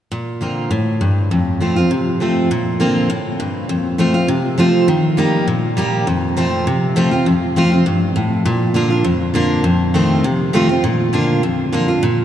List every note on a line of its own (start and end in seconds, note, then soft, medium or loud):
0.12 0.68 A#2 medium
0.41 0.69 D3 medium
0.41 0.70 A#3 medium
0.41 0.70 C4 medium
0.41 0.70 F4 medium
0.71 0.99 A2 medium
1.01 1.29 G2 medium
1.31 1.88 F2 medium
1.60 1.76 F3 medium
1.60 1.76 A3 medium
1.60 1.76 C4 medium
1.60 1.75 F4 medium
1.76 1.91 C4 soft
1.76 1.90 F4 medium
1.91 2.47 C3 medium
2.20 2.48 F3 medium
2.20 2.49 A3 medium
2.20 2.49 C4 medium
2.20 2.50 F4 medium
2.51 3.07 A#2 medium
2.80 3.08 D3 medium
2.80 3.08 A#3 medium
2.80 3.09 C4 medium
2.80 3.09 F4 medium
3.10 3.38 A2 medium
3.40 3.68 G2 medium
3.69 4.26 F2 medium
3.98 4.14 F3 medium
3.98 4.14 A3 medium
3.98 4.14 C4 medium
3.98 4.13 F4 medium
4.14 4.29 C4 soft
4.14 4.28 F4 medium
4.28 4.85 C3 medium
4.58 4.86 F3 medium
4.58 4.87 A3 medium
4.58 4.87 C4 medium
4.58 4.87 F4 medium
4.88 5.45 D#3 medium
5.17 5.46 G3 medium
5.17 5.46 A#3 medium
5.17 5.46 D#4 medium
5.17 5.47 G4 medium
5.48 6.04 A#2 medium
5.77 6.05 G3 medium
5.77 6.06 A#3 medium
5.77 6.06 D#4 medium
5.77 6.06 G4 medium
6.07 6.64 F2 medium
6.37 6.65 F3 medium
6.37 6.65 A3 medium
6.37 6.66 C4 medium
6.37 6.66 F4 medium
6.67 7.24 C3 medium
6.96 7.11 F3 medium
6.96 7.12 A3 medium
6.96 7.12 C4 medium
6.96 7.10 F4 medium
7.11 7.26 C4 medium
7.11 7.25 F4 medium
7.26 7.83 F2 medium
7.56 7.71 F3 medium
7.56 7.72 A3 medium
7.56 7.72 C4 medium
7.56 7.70 F4 medium
7.72 7.86 C4 soft
7.72 7.85 F4 medium
7.86 8.14 G2 medium
8.16 8.44 A2 medium
8.46 9.02 A#2 medium
8.74 8.90 D3 medium
8.74 8.90 A#3 medium
8.74 8.91 D4 medium
8.74 8.89 F4 medium
8.90 9.05 D4 soft
8.90 9.04 F4 medium
9.04 9.61 F2 medium
9.34 9.63 D3 medium
9.34 9.63 A#3 medium
9.34 9.63 D4 loud
9.34 9.64 F4 loud
9.64 10.21 F2 medium
9.94 10.23 D#3 medium
9.94 10.23 A3 medium
9.94 10.23 C4 medium
9.94 10.24 F4 medium
10.24 10.81 C3 medium
10.53 10.69 D#3 medium
10.53 10.69 A3 medium
10.53 10.69 C4 loud
10.53 10.68 F4 medium
10.69 10.84 C4 soft
10.69 10.83 F4 medium
10.84 11.40 A#2 medium
11.13 11.42 D3 medium
11.13 11.42 A#3 medium
11.13 11.42 D4 medium
11.13 11.43 F4 medium
11.43 12.00 F2 medium
11.73 11.88 D3 medium
11.73 11.88 A#3 medium
11.73 11.89 D4 medium
11.73 11.87 F4 medium
11.88 12.03 D4 soft
11.88 12.02 F4 medium
12.03 12.25 A#2 medium